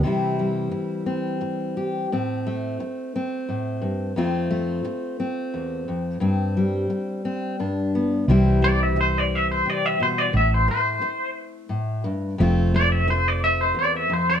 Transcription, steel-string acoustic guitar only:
\new Staff \with { instrumentName = "Steel-string acoustic guitar" } { \clef bass \time 3/4 \key c \major \tempo 4 = 87 << { <e g c' e'>8 g4 c'4 g'8 | c'8 a4 c'4. | <a c' f'>8 a4 c'4. | c'8 g4 c'8 d'8 b8 |
<e g c' e'>8 g2~ g8 | r8 a2~ a8 | <a c' f'>8 a2~ a8 | } \\ { c4 r2 | a,4 r4 a,8 g,8 | f,4 r4 e,8 f,8 | g,4 r4 g,4 |
c4 r4 c8 b,8 | a,4 r4 a,8 g,8 | f,4 r4 e,8 f,8 | } >> }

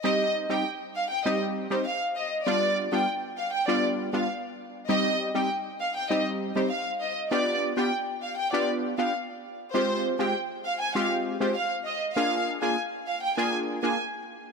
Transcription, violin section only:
\new Staff \with { instrumentName = "Violin section" } { \time 4/4 \key c \minor \tempo 4 = 99 ees''8 r16 g''16 r8 f''16 g''16 ees''16 r8 c''16 f''16 r16 ees''16 r16 | d''8 r16 g''16 r8 f''16 g''16 d''16 r8 f''16 r4 | ees''8 r16 g''16 r8 f''16 g''16 ees''16 r8 c''16 f''16 r16 ees''16 r16 | d''8 r16 g''16 r8 f''16 g''16 d''16 r8 f''16 r4 |
c''8 r16 g''16 r8 f''16 aes''16 f''16 r8 c''16 f''16 r16 ees''16 r16 | f''8 r16 aes''16 r8 f''16 g''16 aes''16 r8 aes''16 r4 | }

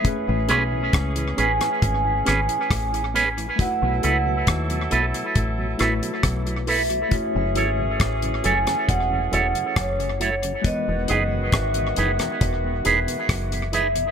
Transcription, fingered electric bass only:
\new Staff \with { instrumentName = "Fingered electric bass" } { \clef bass \time 4/4 \key e \major \tempo 4 = 68 r16 a,,16 b,,8 cis,8 a,,16 r16 gis,,8 gis,,16 r16 a,,4 | r16 b,,16 cis,8 dis,8 b,,16 r16 a,,8 a,,16 r16 b,,4 | r16 fis,,16 gis,,8 a,,8 fis,,16 r16 e,,8 e,,16 r16 fis,,4 | r16 e,,16 fis,,8 gis,,8 fis,,16 r16 e,,8 e,,16 r16 fis,,4 | }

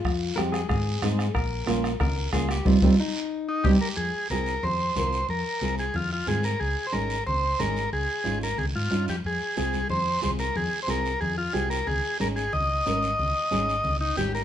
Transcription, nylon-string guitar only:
\new Staff \with { instrumentName = "Nylon-string guitar" } { \time 4/4 \key f \minor \tempo 4 = 182 r4 <aes c' g'>8 r4. <aes c' ees'>8 r8 | r4 <bes des' f'>8 r4. <bes des' f'>8 r8 | <g c' ees'>8 <g c' ees'>8 r2 <g c' ees'>8 r8 | r4 <c' f' aes'>8 r4. <c' f' bes'>8 r8 |
r4 <c' f' aes'>8 r4. <c' f' aes'>8 r8 | r4 <des' ees' aes'>8 r4. <des' ees' aes'>8 r8 | r4 <des' ees' f'>8 r4. <des' ees' f'>8 r8 | r4 <c' f' aes'>8 r4. <c' f' aes'>8 r8 |
r4 <c' f' aes'>8 r4. <c' f' g'>8 r8 | r4 <des' ees' aes'>8 r4. <des' ees' bes'>8 r8 | r4 <des' ees' aes'>8 r4. <des' ees' g'>8 r8 | }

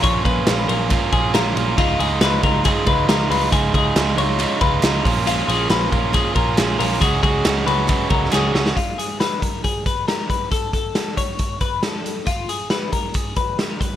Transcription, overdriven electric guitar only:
\new Staff \with { instrumentName = "Overdriven electric guitar" } { \time 4/4 \key des \mixolydian \tempo 4 = 137 <bes, f bes des' f'>8 <bes des' f'>8 <f bes des' f'>8 <bes des' f'>8 <bes, f bes des' f'>8 <bes des' f'>8 <f bes des' f'>8 <bes des' f'>8 | <des f aes ees' f'>8 <aes ees' f'>8 <f aes ees' f'>8 <aes ees' f'>8 <des f aes ees' f'>8 <aes ees' f'>8 <f aes ees' f'>8 <aes ees' f'>8 | <des f aes ees' f'>8 <aes ees' f'>8 <f aes ees' f'>8 <aes ees' f'>8 <des f aes ees' f'>8 <aes ees' f'>8 <f aes ees' f'>8 <bes des' f'>8 | <bes, f bes des' f'>8 <bes des' f'>8 <f bes des' f'>8 <bes des' f'>8 <bes, f bes des' f'>8 <bes des' f'>8 <f bes des' f'>8 <bes des' f'>8 |
<des ges aes des' ges'>8 <aes des' ges'>8 <ges aes des' ges'>8 <aes des' ges'>8 <des ges aes des' ges'>8 <aes des' ges'>8 <ges aes des' ges'>8 <aes des' ges'>8 | r1 | r1 | r1 | }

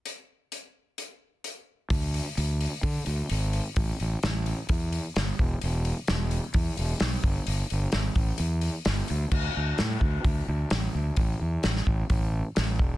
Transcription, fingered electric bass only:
\new Staff \with { instrumentName = "Fingered electric bass" } { \clef bass \time 4/4 \key d \dorian \tempo 4 = 129 r1 | d,4 d,4 d8 d,8 gis,,4 | a,,8 a,,8 a,,4 e,4 g,,8 e,,8 | e,,4 e,,4 e,8 e,,8 b,,8 g,,8 |
g,,8 g,,8 gis,,8 a,,8 e,4 g,,8 d,8 | d,8 d,8 a,8 d,8 d,8 d,8 a,,8 d,8 | a,,8 e,8 a,,8 a,,8 a,,4 a,,8 e,,8 | }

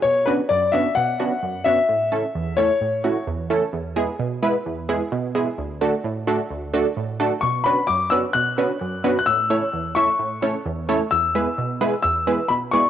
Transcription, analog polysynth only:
\new Staff \with { instrumentName = "Analog polysynth" } { \time 4/4 \key b \dorian \tempo 4 = 130 << { r8 <b cis' d' fis'>8 r8 <b cis' d' fis'>8 r8 <b cis' d' fis'>8 r8 <b cis' d' fis'>8 | r8 <a cis' e' a'>8 r8 <a cis' e' a'>8 r8 <a cis' e' fis'>8 r8 <a cis' e' a'>8 | r8 <gis b e' gis'>8 r8 <gis b e' b'>8 r8 <gis b e' gis'>8 r8 <gis b e' gis'>8 | r8 <a d' fis' a'>8 r8 <a d' fis' a'>8 r8 <a d' fis' a'>8 r8 <a d' fis' a'>8 |
r8 <b cis' d' fis' b'>8 r8 <b cis' d' fis' b'>8 r8 <b cis' d' fis' b'>8 r8 <b cis' d' fis' b'>8 | r8 <a cis' e' a' cis''>8 r8 <a cis' e' a' e''>8 r8 <a cis' e' a' cis''>8 r8 <a cis' e' a' cis''>8 | r8 <gis b e' gis' b'>8 r8 <gis b e' gis' b'>8 r8 <gis b e' gis' b'>8 r8 <gis b e' gis' d''>8 | } \\ { b,4 fis,4 b,4 fis,4 | a,4 e,4 a,4 e,4 | e,4 b,4 e,4 b,4 | d,4 a,4 d,4 a,4 |
b,4 fis,4 b,4 fis,4 | a,4 e,4 a,4 e,4 | e,4 b,4 e,4 b,4 | } >> }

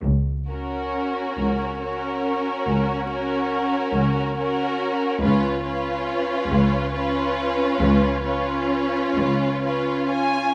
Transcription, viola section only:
\new Staff \with { instrumentName = "Viola section" } { \time 12/8 \key fis \major \tempo 4. = 46 r8 cis'4. cis'4. cis'4. cis'4 | cis'8 cis'4. cis'4. cis'4. cis'4 | }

